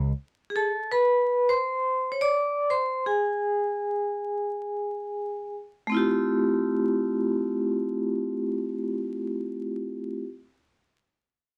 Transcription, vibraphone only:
0.50 0.55 G#4 medium
0.56 0.92 A4 medium
0.56 0.89 A5 medium
0.91 1.51 B4 medium
0.91 1.46 B5 medium
1.49 2.14 C5 medium
1.49 2.08 C6 medium
2.12 2.20 C#5 medium
2.21 2.72 D5 medium
2.21 2.67 D6 medium
2.70 3.03 C5 medium
2.70 3.03 C6 medium
3.06 5.52 G#4 medium
3.06 5.52 G#5 medium
5.87 10.21 A3 medium
5.87 10.22 C4 medium
5.92 10.23 E4 medium
5.92 10.25 F4 medium
5.97 10.26 G4 medium

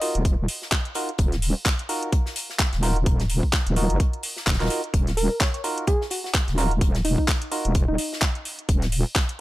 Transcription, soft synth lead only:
0.00 0.15 D#5 medium
5.17 5.39 A#4 medium
5.41 5.49 C#5 medium
5.54 5.60 C#5 medium
5.87 6.03 G#4 medium
6.11 6.19 F#4 medium
6.24 6.31 F#4 medium
7.05 7.13 D#4 medium
7.18 7.24 D#4 medium
7.88 8.22 D#4 medium

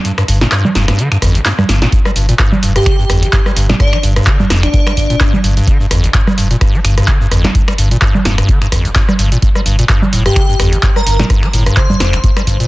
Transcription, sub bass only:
0.28 0.45 G1 loud
0.75 0.92 F1 medium
1.22 1.38 G1 loud
1.69 1.85 G1 medium
2.16 2.32 G1 loud
2.63 2.79 F1 medium
3.10 3.26 G1 loud
3.56 3.73 G1 medium
4.03 4.20 G1 loud
4.50 4.67 F1 medium
4.97 5.13 G1 loud
5.44 5.60 G1 medium
5.91 6.07 G1 loud
6.38 6.54 F1 medium
6.85 7.01 G1 loud
7.31 7.48 G1 medium
7.78 7.95 G1 loud
8.25 8.42 F1 medium
8.72 8.89 G1 medium
9.19 9.35 G1 medium
9.66 9.82 G1 loud
10.13 10.29 F1 medium
10.60 10.76 G1 loud
11.07 11.23 G1 medium
11.53 11.70 G1 loud
12.00 12.17 F1 medium
12.47 12.64 G1 loud

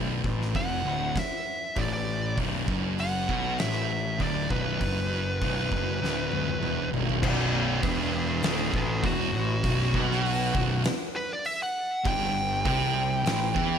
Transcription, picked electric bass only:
0.00 0.21 B0 medium
0.25 0.53 A1 medium
0.55 0.83 F1 medium
0.84 1.13 D1 medium
1.76 2.33 A1 medium
2.38 2.66 B0 loud
2.68 3.25 F#1 loud
3.29 3.57 B1 medium
3.60 4.16 A1 medium
4.20 4.48 D1 medium
4.50 4.78 B0 medium
4.81 5.37 F#1 loud
5.42 5.70 B0 loud
5.72 6.00 F#1 medium
6.01 6.58 D1 medium
6.61 6.90 E1 medium
6.91 7.20 B0 medium
7.23 7.79 B0 loud
7.83 8.39 E1 loud
8.43 8.71 D1 medium
8.74 9.02 A1 loud
9.04 9.32 E1 loud
9.35 9.63 A1 medium
9.64 9.92 B0 loud
9.95 10.51 B1 loud
10.56 10.83 B0 loud
12.06 12.62 G1 loud
12.66 13.22 C2 medium
13.24 13.53 A1 loud
13.56 13.79 E2 loud

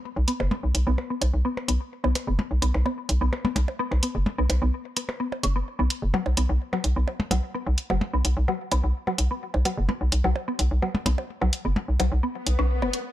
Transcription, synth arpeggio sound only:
0.28 0.32 B3 loud
0.51 0.55 B3 medium
0.87 0.90 B3 loud
1.10 1.14 B3 medium
1.45 1.49 B3 loud
1.68 1.72 B3 medium
2.04 2.07 B3 loud
2.27 2.31 B3 medium
2.62 2.66 B3 loud
2.85 2.89 B3 medium
3.21 3.25 B3 loud
3.45 3.48 B3 medium
3.79 3.83 B3 loud
4.03 4.07 B3 medium
4.38 4.42 B3 loud
4.62 4.65 B3 medium
4.97 5.00 B3 medium
5.20 5.26 B3 medium
5.43 5.47 C#4 medium
5.56 5.59 B3 medium
5.79 5.83 B3 medium
6.14 6.19 F#3 loud
6.37 6.41 B3 medium
6.73 6.78 F#3 loud
6.96 7.00 B3 medium
7.31 7.37 F#3 loud
7.54 7.58 B3 medium
7.90 7.95 F#3 medium
8.13 8.17 B3 medium
8.48 8.54 F#3 loud
8.72 8.75 B3 medium
9.07 9.12 F#3 loud
9.31 9.34 B3 medium
9.65 9.71 F#3 loud
9.89 9.93 B3 medium
10.24 10.30 F#3 loud
10.48 10.51 B3 medium
10.83 10.88 F#3 loud
11.06 11.10 B3 medium
11.42 11.47 F#3 loud
11.65 11.68 B3 medium
12.00 12.05 F#3 loud
12.23 12.27 B3 medium
12.59 12.61 C#4 medium
12.82 12.84 B3 medium

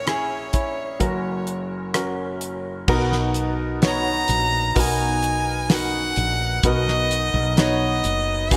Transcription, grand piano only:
0.00 0.97 A#1 medium
0.00 0.97 A#2 medium
0.00 0.06 C#4 medium
0.00 0.07 E4 medium
0.00 1.00 A#4 medium
0.06 0.51 C#4 medium
0.06 0.51 E4 medium
0.06 0.52 G#4 medium
0.53 0.98 C#4 medium
0.53 0.98 E4 medium
0.53 0.99 C#5 medium
0.99 2.84 F#1 medium
0.99 2.84 F#2 medium
0.99 1.89 C#4 medium
0.99 1.90 F#4 medium
0.99 1.90 A#4 medium
1.94 2.83 C#4 medium
1.94 2.84 F#4 medium
1.94 2.84 A#4 medium
2.88 4.25 B2 medium
2.88 3.77 B3 medium
2.88 3.78 D#4 medium
2.88 3.78 F#4 medium
2.88 3.78 A#4 loud
3.82 4.71 B3 medium
3.82 4.71 D#4 medium
3.82 4.72 F#4 medium
3.82 4.72 C#5 medium
4.75 5.65 B3 medium
4.75 5.65 D#4 medium
4.75 5.65 F#4 medium
4.75 5.65 A#4 medium
5.69 6.59 B3 medium
5.69 6.59 D#4 soft
5.69 6.59 F#4 medium
5.69 6.59 A#4 medium
6.64 8.01 B2 medium
6.64 7.53 B3 medium
6.64 7.53 D#4 medium
6.64 7.53 F#4 medium
6.64 7.54 A#4 medium
7.57 8.46 B3 medium
7.57 8.47 D#4 medium
7.57 8.47 F#4 medium
7.57 8.47 C#5 medium
8.51 8.57 B3 medium
8.51 8.57 D#4 medium
8.51 8.57 F#4 medium
8.51 8.57 G#4 medium

